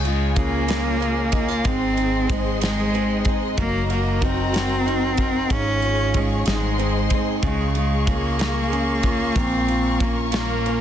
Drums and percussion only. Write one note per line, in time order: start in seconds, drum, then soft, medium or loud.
0.05 ride soft
0.36 kick medium
0.36 ride medium
0.68 snare loud
0.68 ride medium
1.02 ride soft
1.32 kick medium
1.32 ride medium
1.65 kick loud
1.65 ride medium
1.97 ride soft
2.30 kick medium
2.30 ride medium
2.61 snare loud
2.61 ride medium
2.95 ride soft
3.25 kick medium
3.25 ride soft
3.57 kick loud
3.57 ride medium
3.90 ride soft
4.22 kick medium
4.22 ride medium
4.54 snare loud
4.54 ride medium
4.88 ride soft
5.17 kick medium
5.17 ride soft
5.50 kick loud
5.50 ride medium
5.82 ride soft
6.14 kick medium
6.14 ride medium
6.46 snare loud
6.46 ride medium
6.79 ride soft
7.10 kick medium
7.10 ride medium
7.43 kick loud
7.43 ride medium
7.75 ride soft
8.07 kick medium
8.07 ride medium
8.39 snare loud
8.39 ride medium
8.73 ride soft
9.03 kick medium
9.03 ride medium
9.36 kick loud
9.36 ride medium
9.68 ride soft
10.00 kick loud
10.00 ride medium
10.32 snare loud
10.32 ride medium
10.66 ride soft